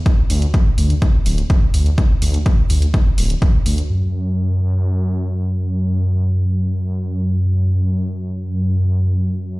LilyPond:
<<
  \new Staff \with { instrumentName = "Detuned saw bass" } { \clef bass \time 4/4 \key d \lydian \tempo 4 = 125 r8 d,8 r8 d,8 r8 d,,8 r8 d,8 | r8 d,8 r8 d,8 r8 d,,8 r8 d,8 | fis,1~ | fis,1~ |
fis,1 | }
  \new DrumStaff \with { instrumentName = "Drums" } \drummode { \time 4/4 <hh bd>8 hho16 hh16 <hh bd>8 hho16 hh16 <hh bd>8 hho16 hh16 <hh bd>8 hho16 hh16 | <hh bd>8 hho16 hh16 <hh bd>8 hho16 hh16 <hh bd>8 hho16 hh16 <hh bd>8 hho16 hh16 | r4 r4 r4 r4 | r4 r4 r4 r4 |
r4 r4 r4 r4 | }
>>